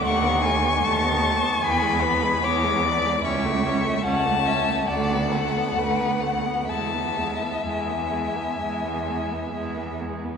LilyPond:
<<
  \new Staff \with { instrumentName = "Violin" } { \time 4/4 \key e \mixolydian \tempo 4 = 69 cis'''2 b''4 d'''4 | cis'''4 a''4 fis''2 | a''4 gis''2~ gis''8 r8 | }
  \new Staff \with { instrumentName = "Violin" } { \time 4/4 \key e \mixolydian fis''8 gis''8 a''4 gis''8 b'8 cis''8 d''8 | e''4 fis''8 e''8 d''8 a'8 b'8 fis''8 | e''2.~ e''8 r8 | }
  \new Staff \with { instrumentName = "Viola" } { \time 4/4 \key e \mixolydian a16 b16 a16 b16 a16 b16 a16 b16 b16 gis16 b16 gis16 b16 gis16 b16 gis16 | cis'16 a16 cis'16 a16 cis'16 a16 cis'16 a16 a16 b16 a16 b16 a16 b16 a16 b16 | gis16 b16 gis16 b16 gis16 b16 gis16 b16 gis16 b16 gis16 b16 gis16 b16 gis16 b16 | }
  \new Staff \with { instrumentName = "Cello" } { \clef bass \time 4/4 \key e \mixolydian dis,4 dis,4 e,4 e,4 | cis,4 cis,4 d,4 d,4 | e,4 e,4 e,4 e,4 | }
>>